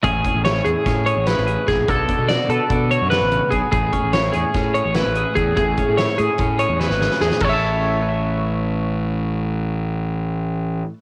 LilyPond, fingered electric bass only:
\new Staff \with { instrumentName = "Fingered electric bass" } { \clef bass \time 9/8 \key a \major \tempo 4. = 98 a,,8 r16 a,,8. e,16 r16 a,8. a,,8 a,,8 r16 bes,,8 | b,,8 r16 b,8 r16 b,16 r16 b,8. fis,8 a,,8 r16 b,,16 r16 | a,,8 r16 a,,8. e,16 r16 a,8. a,,8 a,,8 r16 e,8 | a,,8 r16 a,8 r16 a,16 r16 a,8. e,8 gis,,8 r16 e,16 r16 |
a,,1~ a,,8~ | a,,1~ a,,8 | }